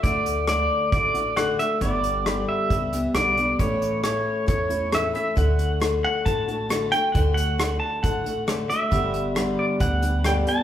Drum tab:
HH |xxx-xxxx|xxx-xxxx|xxx-xxxx|xxx-xxxx|
SD |--r---r-|--r---r-|--r---r-|--r---r-|
BD |o---o---|o---o---|o---o---|o---o---|

HH |xxx-xxxx|xxx-xxxx|
SD |--r---r-|--r---r-|
BD |o---o---|o---o---|